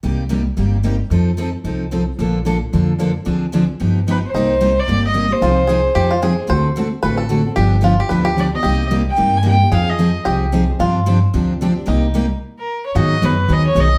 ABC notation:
X:1
M:4/4
L:1/8
Q:"Swing" 1/4=223
K:Cm
V:1 name="Violin"
z8 | z8 | z8 | z6 =B c- |
c3 d2 e2 c- | c6- c z | z8 | z6 d e- |
e2 z g2 a g2 | f e3 z4 | z8 | z4 z B2 _d |
[K:G#m] d2 B2 d c d2 |]
V:2 name="Five-string banjo"
z8 | z8 | z8 | z8 |
E8 | F2 A2 G F A2 | c4 =B =A3 | G2 F G =B G2 z |
G8 | A4 G4 | F8 | E4 z4 |
[K:G#m] F8 |]
V:3 name="Steel-string acoustic guitar"
[C,G,B,EG] z [C,G,B,EG] z [C,G,B,EG] z [C,G,B,EG] z | [F,CE=A] z [F,CEA] z [F,CEA] z [F,CEA] z | [D,F,B,D=A] z [D,F,B,DA] z [D,F,B,DA] z [D,F,B,DA] z | [D,F,CDA] z [D,F,CDA] z [F,=B,^DG] z [F,B,DG] z |
[C,G,B,EG] z [C,G,B,EG] z [C,G,B,EG] z [C,G,B,EG] [B,EG] | [C,F,CEA] z [C,F,CEA] z [C,F,CEA] z [C,F,CEA] [CEA] | [D,=A,C^F=A] z [D,A,CFA] z [D,A,CFA] z [D,A,CFA] [CFA] | [D,F,=B,DG] z [D,F,B,DG] z [D,F,B,DG] z [D,F,B,DG] [B,DG] |
[C,G,B,EG] z [C,G,B,EG] z [C,G,B,EG] z [C,G,B,EG] [B,EG] | [F,CEA] z [F,CEA] z [F,CEA] z [F,CEA] [CEA] | [C,F,CDG] z [C,F,CDG] z [C,F,CDG] z [C,F,CDG] [CDG] | [C,G,B,EG] z [C,G,B,EG] z4 z |
[K:G#m] [D,F,B,DG] z [D,F,B,DG] z [D,F,B,DG] z [D,F,B,DG] z |]
V:4 name="Steel-string acoustic guitar"
[C,G,B,EG] z [C,G,B,EG] z [C,G,B,EG] z [C,G,B,EG] z | [F,CE=A] z [F,CEA] z [F,CEA] z [F,CEA] z | [D,F,B,D=A] z [D,F,B,DA] z [D,F,B,DA] z [D,F,B,DA] z | [D,F,CDA] z [D,F,CDA] z [F,=B,^DG] z [F,B,DG] z |
[C,G,B,EG] z [C,G,B,EG] z [C,G,B,EG] z [C,G,B,EG] z | [C,F,CEA] z [C,F,CEA] z [C,F,CEA] z [C,F,CEA] z | [D,=A,C^F=A] z [D,A,CFA] z [D,A,CFA] z [D,A,CFA] z | [D,F,=B,DG] z [D,F,B,DG] z [D,F,B,DG] z [D,F,B,DG] z |
[C,G,B,EG] z [C,G,B,EG] z [C,G,B,EG] z [C,G,B,EG] z | [F,CEA] z [F,CEA] z [F,CEA] z [F,CEA] z | [C,F,CDG] z [C,F,CDG] z [C,F,CDG] z [C,F,CDG] z | [C,G,B,EG] z [C,G,B,EG] z4 z |
[K:G#m] [D,F,B,DG] z [D,F,B,DG] z [D,F,B,DG] z [D,F,B,DG] z |]
V:5 name="Upright bass" clef=bass
C,,4 G,,,4 | F,,4 C,,4 | B,,,4 F,,4 | D,,4 G,,,4 |
C,,4 G,,,4 | C,,4 F,,4 | D,,4 =A,,,4 | G,,,4 D,,4 |
C,,4 G,,4 | F,,4 C,,4 | G,,4 D,,4 | C,,4 z4 |
[K:G#m] G,,2 F,,2 D,,2 B,,,2 |]